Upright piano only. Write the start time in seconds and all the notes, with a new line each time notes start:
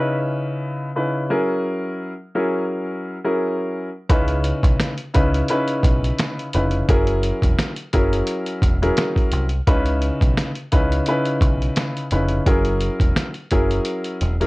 Already playing: C#3 C#4 D#4 E4 B4
0.95 C#3 C#4 D#4 E4 B4
1.30 F#3 C#4 E4 G#4 A#4
2.35 F#3 C#4 E4 G#4 A#4
3.24 F#3 C#4 E4 G#4 A#4
4.09 C#3 C#4 D#4 E4 B4
5.14 C#3 C#4 D#4 E4 B4
5.49 C#3 C#4 D#4 E4 B4
6.54 C#3 C#4 D#4 E4 B4
6.88 F#3 C#4 E4 G#4 A#4
7.93 F#3 C#4 E4 G#4 A#4
8.82 F#3 C#4 E4 G#4 A#4
9.67 C#3 C#4 D#4 E4 B4
10.72 C#3 C#4 D#4 E4 B4
11.08 C#3 C#4 D#4 E4 B4
12.12 C#3 C#4 D#4 E4 B4
12.46 F#3 C#4 E4 G#4 A#4
13.51 F#3 C#4 E4 G#4 A#4
14.40 F#3 C#4 E4 G#4 A#4